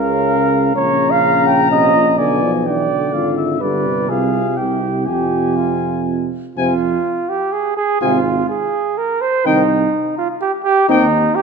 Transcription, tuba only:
0.00 0.72 C#2 medium
0.75 2.20 A#1 medium
2.19 3.15 B1 medium
3.14 3.63 G#1 soft
3.61 4.11 G1 soft
4.09 4.44 C2 medium
4.58 5.10 C2 soft
5.08 6.33 F2 soft
6.57 6.98 F2 medium
8.02 8.42 G#1 medium
9.46 9.86 C2 medium
10.89 11.29 D#2 medium

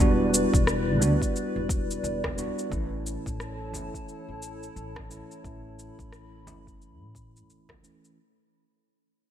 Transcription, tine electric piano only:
0.00 0.99 G3 medium
0.00 1.00 B3 medium
0.00 1.02 D4 medium
0.00 1.03 F#4 medium
0.99 2.33 G3 medium
0.99 2.34 B3 medium
0.99 2.35 D4 medium
0.99 2.35 F#4 medium
2.37 2.68 G3 medium
2.37 2.68 B3 medium
2.37 2.68 D4 medium
2.37 2.69 F#4 medium
2.69 3.69 E3 medium
2.69 3.70 A3 medium
2.69 3.71 C#4 medium
2.69 3.71 E4 medium
3.72 5.06 E3 medium
3.72 5.07 A3 medium
3.72 5.07 C#4 medium
3.76 5.08 E4 medium
5.09 5.41 E3 medium
5.09 5.41 A3 medium
5.09 5.41 C#4 medium
5.09 5.42 E4 medium
5.43 6.43 E3 medium
5.43 6.43 A3 medium
5.43 6.44 C#4 medium
5.43 6.45 E4 medium
6.45 7.79 E3 medium
6.45 7.80 A3 medium
6.45 7.80 C#4 medium
6.45 7.81 E4 medium
7.82 8.13 E3 medium
7.82 8.14 A3 medium
7.82 8.14 C#4 medium
7.82 8.14 E4 medium

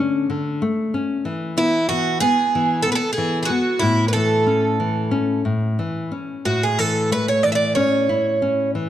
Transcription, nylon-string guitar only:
0.00 0.28 D3 medium
0.00 0.29 C#4 medium
0.30 0.61 D3 soft
0.62 0.93 A3 medium
0.94 1.25 C#4 soft
1.25 1.88 E3 medium
1.57 1.88 B3 soft
1.90 2.21 E3 soft
2.22 2.53 B3 medium
2.55 2.86 E3 medium
2.87 3.17 B3 soft
3.18 3.49 E3 soft
3.50 3.81 B3 soft
3.82 5.44 A2 medium
4.15 4.46 E3 soft
4.47 4.78 C#4 soft
4.80 5.11 E3 soft
5.11 5.43 C#4 soft
5.45 5.77 A2 soft
5.79 6.11 E3 soft
6.12 6.44 C#4 soft
6.45 8.89 A2 medium
6.79 7.10 E3 soft
7.11 7.42 A3 soft
7.44 7.75 E3 soft
7.76 8.08 C#4 medium
8.09 8.41 E4 soft
8.42 8.73 C#4 soft
8.75 8.89 E3 soft

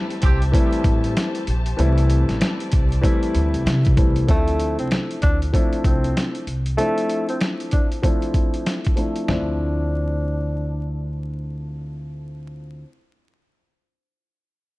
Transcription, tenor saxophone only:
4.30 4.77 A3 loud
4.80 4.90 C4 medium
5.22 5.40 D4 medium
5.85 6.32 C4 medium
6.78 7.25 A3 loud
7.30 7.40 C4 medium
7.73 7.90 D4 medium
9.29 11.12 D4 medium

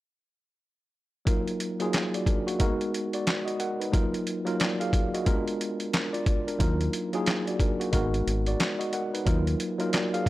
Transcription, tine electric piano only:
1.25 1.75 F#3 medium
1.25 1.75 A#3 medium
1.25 1.75 D#4 medium
1.25 1.76 F4 medium
1.25 1.76 A#4 medium
1.79 2.10 F#3 medium
1.79 1.93 A#3 medium
1.79 1.94 D#4 medium
1.79 1.94 F4 medium
1.79 1.94 G#4 medium
2.15 2.27 F#4 medium
2.15 2.27 D5 medium
2.28 2.47 D4 medium
2.28 2.46 A#4 medium
2.47 2.58 A#3 medium
2.47 2.59 F#4 medium
2.59 3.84 G#3 medium
2.59 2.68 A#3 medium
2.59 2.94 D#4 medium
2.59 2.94 F#4 medium
2.59 2.94 A#4 loud
2.66 3.88 B3 medium
3.14 3.45 F#4 medium
3.14 3.45 D5 medium
3.45 3.59 F#4 medium
3.45 3.59 D#5 medium
3.60 3.80 A#4 medium
3.60 3.79 F#5 medium
3.80 3.92 D#4 medium
3.80 4.12 B4 medium
3.91 4.41 F#3 medium
3.91 4.41 A#3 medium
3.91 4.42 D#4 medium
3.91 4.42 F4 medium
3.91 4.42 A#4 medium
4.45 4.76 F#3 medium
4.45 4.76 A#3 medium
4.45 4.77 D#4 medium
4.45 4.60 F4 medium
4.45 4.60 A#4 medium
4.60 4.80 F#4 medium
4.60 4.79 D5 medium
4.80 5.12 G#4 medium
4.80 5.12 F5 medium
5.14 5.46 F#4 medium
5.14 5.46 D#5 medium
5.25 6.50 G#3 medium
5.25 6.51 B3 medium
5.25 5.34 C#4 medium
5.25 5.60 F4 medium
5.25 5.61 A#4 loud
5.33 5.63 D4 medium
5.93 6.13 D4 medium
5.93 6.13 A#4 medium
6.13 6.45 F4 medium
6.13 6.45 D5 medium
6.47 6.79 D4 medium
6.47 6.60 A#4 medium
6.58 7.08 F#3 medium
6.58 7.08 A#3 medium
6.58 7.08 D#4 medium
6.58 7.09 F4 medium
6.58 7.09 A#4 medium
7.13 7.43 F#3 medium
7.13 7.27 A#3 medium
7.13 7.27 D#4 medium
7.13 7.27 F4 medium
7.13 7.27 G#4 medium
7.47 7.60 F#4 medium
7.47 7.60 D5 medium
7.61 7.80 D4 medium
7.61 7.80 A#4 medium
7.80 7.91 A#3 medium
7.80 7.92 F#4 medium
7.92 9.17 G#3 medium
7.92 8.01 A#3 medium
7.92 8.27 D#4 medium
7.92 8.27 F#4 medium
7.92 8.27 A#4 loud
7.99 9.21 B3 medium
8.47 8.78 F#4 medium
8.47 8.79 D5 medium
8.79 8.92 F#4 medium
8.79 8.92 D#5 medium
8.93 9.13 A#4 medium
8.93 9.13 F#5 medium
9.14 9.25 D#4 medium
9.14 9.45 B4 medium
9.25 9.74 F#3 medium
9.25 9.75 A#3 medium
9.25 9.75 D#4 medium
9.25 9.75 F4 medium
9.25 9.76 A#4 medium
9.78 10.09 F#3 medium
9.78 10.10 A#3 medium
9.78 10.10 D#4 medium
9.78 9.93 F4 medium
9.78 9.94 A#4 medium
9.93 10.13 F#4 medium
9.93 10.13 D5 medium
10.14 10.29 G#4 medium
10.14 10.29 F5 medium

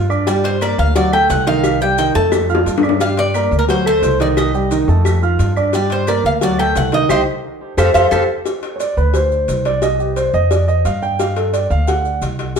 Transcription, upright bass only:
0.00 0.73 G2 medium
0.78 1.26 D2 loud
1.30 2.09 C2 medium
2.15 2.63 F2 loud
2.66 3.46 G2 medium
3.51 3.99 D2 loud
4.02 4.82 C2 medium
4.88 5.36 F2 loud
5.39 6.19 G2 medium
6.24 6.72 D2 medium
6.76 7.07 C2 medium
7.10 7.22 C2 loud
7.77 7.90 F2 loud
7.94 8.08 F2 loud
8.12 8.25 F2 loud
8.97 9.45 D2 medium
9.48 10.28 C2 medium
10.34 10.82 F2 medium
10.85 11.65 G2 medium
11.70 12.18 D2 loud
12.21 12.60 C2 medium

